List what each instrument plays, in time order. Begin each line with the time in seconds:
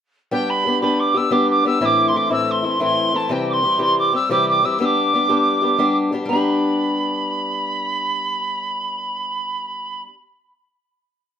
0.31 steel-string acoustic guitar G3 B3 D4 G4, tin whistle G5
0.50 tin whistle B5
0.66 steel-string acoustic guitar G3 B3 D4 G4
0.82 steel-string acoustic guitar G3 B3 D4 G4, tin whistle B5
1.00 tin whistle D6
1.14 steel-string acoustic guitar B3 D4 G4, tin whistle E6
1.31 steel-string acoustic guitar G3 B3 D4 G4, tin whistle D6
1.50 tin whistle D6
1.65 steel-string acoustic guitar G3 B3 D4 G4, tin whistle E6
1.81 steel-string acoustic guitar A2 E3 A3 C4 E4, tin whistle E6
1.85 tin whistle D6
2.08 tin whistle C6
2.14 steel-string acoustic guitar E3 A3 C4 E4, tin whistle D6
2.30 steel-string acoustic guitar A2 E3 A3 C4 E4, tin whistle E6
2.51 tin whistle C6
2.63 steel-string acoustic guitar A3 C4 E4
2.79 steel-string acoustic guitar A2 E3 A3 C4 E4, tin whistle C6
3.13 steel-string acoustic guitar E3 A3 C4 E4, tin whistle A5
3.29 steel-string acoustic guitar C3 E3 G3 C4 G4, tin whistle G5
3.49 tin whistle C6 D6
3.62 steel-string acoustic guitar E3 G3 C4 G4
3.79 steel-string acoustic guitar C3 E3 G3 C4 G4, tin whistle C6
3.99 tin whistle D6
4.13 steel-string acoustic guitar G3 C4 G4, tin whistle E6
4.29 steel-string acoustic guitar C3 E3 G3 C4 G4, tin whistle D6
4.49 tin whistle D6
4.63 steel-string acoustic guitar E3 G3 C4 G4, tin whistle E6
4.80 steel-string acoustic guitar G3 B3 D4 G4, tin whistle E6
4.85 tin whistle D6
5.14 steel-string acoustic guitar G3 B3 D4 G4
5.29 steel-string acoustic guitar G3 B3 D4 G4
5.62 steel-string acoustic guitar B3 D4 G4
5.78 steel-string acoustic guitar G3 B3 D4 G4
6.12 steel-string acoustic guitar G3 B3 D4 G4
6.25 steel-string acoustic guitar G3 B3, tin whistle B5
6.33 steel-string acoustic guitar D4 G4